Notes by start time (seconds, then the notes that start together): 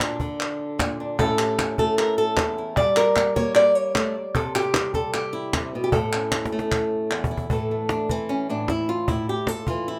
Already playing: A#2 A#4
0.00 D4, cajon slap, clap
0.20 D3, cajon bass
0.40 cajon slap, clap
0.59 cajon slap
0.79 A#2, cajon bass, cajon slap, clap
1.00 D4
1.19 A2 A3 C#4 E4 A4, cajon bass
1.38 G4, cajon slap, clap
1.59 C#4, cajon slap, clap
1.78 A3 A4, cajon bass
1.98 A#4, cajon slap, clap
2.17 A4, cajon slap
2.37 E2, cajon bass, cajon slap, clap
2.58 E4
2.77 G3 D5, cajon bass
2.96 A#4, clap
3.16 cajon slap, clap
3.36 A#3 C#5, cajon bass
3.55 D5, cajon slap, clap
3.75 C#5
3.95 A3, cajon slap, clap
4.35 C3 A4, cajon bass
4.55 G4, clap
4.74 G3, cajon slap, clap
4.94 G3 A4, cajon bass
5.13 G4, cajon slap, clap
5.33 E4
5.53 C3, cajon bass, cajon slap, clap
5.75 B2
5.84 G4
5.92 A2 A4, cajon bass
6.12 C#4, clap
6.32 cajon slap, clap
6.45 cajon slap
6.52 A3
6.59 cajon slap
6.71 cajon bass, clap
7.11 E2, clap
7.24 cajon bass
7.31 E4
7.37 cajon bass
7.50 A2 E3 A3 A4, cajon bass
7.70 A3, cajon slap
7.89 D4, cajon slap
8.09 E3 C4, cajon bass
8.29 C#4
8.49 A2 D4
8.68 E4, cajon bass, cajon slap
8.89 F4
9.08 A2 E4, cajon bass
9.28 G4, cajon slap
9.47 A4, cajon slap
9.67 E3 F4, cajon bass
9.88 E4